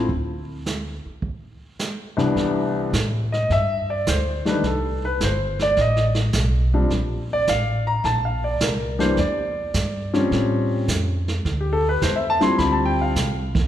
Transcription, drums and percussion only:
0.09 brush sweep soft
0.09 kick soft
0.66 snare soft
0.66 hi-hat pedal soft
1.22 brush sweep soft
1.22 kick soft
1.79 snare medium
1.79 hi-hat pedal medium
2.19 snare soft
2.36 brush sweep medium
2.36 kick soft
2.36 snare soft
2.93 kick soft
2.93 snare medium
2.93 hi-hat pedal soft
3.33 snare soft
3.50 brush sweep soft
3.50 kick soft
3.50 snare soft
4.07 kick soft
4.07 snare medium
4.07 hi-hat pedal medium
4.46 snare soft
4.64 brush sweep soft
4.64 kick soft
4.64 snare soft
5.20 kick soft
5.20 snare medium
5.20 hi-hat pedal soft
5.59 snare soft
5.77 brush sweep soft
5.77 kick soft
5.77 snare soft
5.96 snare soft
6.15 snare soft
6.33 kick soft
6.33 snare medium
6.33 hi-hat pedal soft
6.90 brush sweep soft
6.90 kick soft
6.90 snare soft
7.47 kick soft
7.47 snare medium
7.47 hi-hat pedal soft
8.04 brush sweep soft
8.04 kick soft
8.04 snare soft
8.60 kick soft
8.60 snare medium
8.60 hi-hat pedal medium
9.00 snare soft
9.17 brush sweep soft
9.17 kick soft
9.17 snare soft
9.74 kick soft
9.74 snare medium
9.74 hi-hat pedal medium
10.14 snare soft
10.31 brush sweep soft
10.31 kick soft
10.31 snare soft
10.88 kick soft
10.88 snare medium
10.88 hi-hat pedal medium
11.28 snare soft
11.45 brush sweep soft
11.45 kick soft
11.45 snare soft
12.02 kick soft
12.02 snare medium
12.02 hi-hat pedal soft
12.41 snare soft
12.58 brush sweep soft
12.58 kick soft
12.58 snare soft
13.16 kick soft
13.16 snare medium
13.16 hi-hat pedal medium
13.55 kick medium
13.55 snare soft

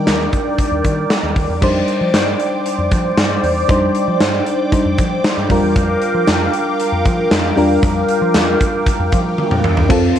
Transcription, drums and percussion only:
0.07 snare loud
0.07 closed hi-hat medium
0.33 kick medium
0.33 closed hi-hat medium
0.58 kick medium
0.58 closed hi-hat medium
0.84 kick medium
0.84 closed hi-hat medium
1.10 snare loud
1.10 closed hi-hat medium
1.36 kick medium
1.36 open hi-hat medium
1.62 kick loud
1.62 crash medium
1.88 closed hi-hat medium
2.14 snare loud
2.14 closed hi-hat medium
2.40 closed hi-hat medium
2.66 closed hi-hat medium
2.91 kick medium
2.91 closed hi-hat medium
3.17 snare loud
3.17 closed hi-hat medium
3.43 open hi-hat medium
3.69 kick loud
3.69 closed hi-hat medium
3.95 closed hi-hat medium
4.20 snare loud
4.20 closed hi-hat medium
4.46 closed hi-hat medium
4.72 kick medium
4.72 closed hi-hat medium
4.98 kick medium
4.98 closed hi-hat medium
5.24 snare loud
5.24 closed hi-hat medium
5.50 kick medium
5.50 open hi-hat medium
5.76 kick loud
5.76 closed hi-hat medium
6.02 closed hi-hat medium
6.27 snare loud
6.27 closed hi-hat medium
6.54 closed hi-hat medium
6.80 closed hi-hat medium
7.05 kick loud
7.05 closed hi-hat medium
7.31 snare loud
7.31 closed hi-hat medium
7.57 open hi-hat medium
7.83 kick loud
7.83 closed hi-hat medium
8.09 closed hi-hat medium
8.34 snare loud
8.34 closed hi-hat medium
8.34 tambourine medium
8.60 kick medium
8.60 closed hi-hat medium
8.86 kick medium
8.86 closed hi-hat medium
9.12 kick medium
9.12 closed hi-hat medium
9.38 high tom medium
9.51 mid tom medium
9.64 mid tom loud
9.77 floor tom medium
9.90 kick loud
9.90 crash medium
10.16 closed hi-hat medium

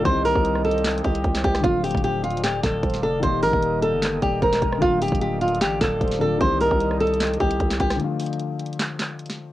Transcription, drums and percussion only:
0.05 kick loud
0.05 closed hi-hat medium
0.25 open hi-hat medium
0.35 kick loud
0.45 closed hi-hat medium
0.55 cross-stick medium
0.65 closed hi-hat soft
0.71 closed hi-hat medium
0.78 closed hi-hat medium
0.84 snare loud
0.84 clap medium
0.84 closed hi-hat medium
0.91 closed hi-hat medium
0.98 closed hi-hat medium
1.04 kick loud
1.04 closed hi-hat soft
1.15 closed hi-hat medium
1.24 kick loud
1.24 closed hi-hat medium
1.35 snare loud
1.35 clap medium
1.44 kick medium
1.44 closed hi-hat medium
1.55 cross-stick medium
1.55 snare medium
1.64 kick loud
1.64 closed hi-hat medium
1.84 closed hi-hat medium
1.84 open hi-hat medium
1.91 kick loud
1.91 closed hi-hat medium
1.97 closed hi-hat medium
2.04 closed hi-hat medium
2.24 closed hi-hat medium
2.30 closed hi-hat medium
2.37 closed hi-hat medium
2.44 snare loud
2.44 clap loud
2.44 closed hi-hat medium
2.63 kick loud
2.63 snare loud
2.63 clap medium
2.63 closed hi-hat medium
2.83 kick loud
2.83 closed hi-hat medium
2.90 snare medium
2.90 closed hi-hat soft
2.96 closed hi-hat soft
3.23 kick loud
3.23 closed hi-hat medium
3.43 open hi-hat medium
3.53 kick loud
3.63 closed hi-hat medium
3.83 closed hi-hat medium
4.02 snare loud
4.02 clap medium
4.02 closed hi-hat medium
4.22 kick loud
4.22 closed hi-hat medium
4.42 kick loud
4.42 closed hi-hat medium
4.53 snare loud
4.53 clap medium
4.62 kick medium
4.62 closed hi-hat medium
4.73 cross-stick loud
4.82 kick loud
4.82 closed hi-hat medium
5.02 closed hi-hat medium
5.02 open hi-hat medium
5.08 kick loud
5.08 closed hi-hat medium
5.15 closed hi-hat medium
5.22 closed hi-hat medium
5.42 closed hi-hat medium
5.48 closed hi-hat medium
5.55 closed hi-hat medium
5.61 snare loud
5.61 clap medium
5.61 closed hi-hat medium
5.81 kick loud
5.81 snare loud
5.81 clap medium
5.81 closed hi-hat medium
6.01 kick loud
6.01 closed hi-hat medium
6.08 snare medium
6.08 closed hi-hat soft
6.14 closed hi-hat soft
6.41 kick loud
6.41 closed hi-hat medium
6.61 open hi-hat loud
6.71 kick loud
6.81 closed hi-hat medium
6.91 cross-stick medium
7.01 closed hi-hat soft
7.07 closed hi-hat medium
7.14 closed hi-hat medium
7.20 snare loud
7.20 clap loud
7.20 closed hi-hat medium
7.27 closed hi-hat medium
7.34 closed hi-hat medium
7.40 kick loud
7.40 closed hi-hat medium
7.51 closed hi-hat medium
7.60 kick loud
7.60 closed hi-hat medium
7.71 snare loud
7.71 clap medium
7.80 kick medium
7.80 closed hi-hat medium
7.90 cross-stick loud
7.90 snare medium
8.00 closed hi-hat medium
8.20 closed hi-hat medium
8.20 open hi-hat medium
8.26 closed hi-hat medium
8.33 closed hi-hat medium
8.39 closed hi-hat medium
8.59 closed hi-hat medium
8.66 closed hi-hat medium
8.73 closed hi-hat medium
8.79 snare loud
8.79 clap medium
8.79 closed hi-hat medium
8.99 snare loud
8.99 clap medium
8.99 closed hi-hat medium
9.19 closed hi-hat medium
9.26 snare medium
9.26 closed hi-hat soft
9.32 closed hi-hat soft

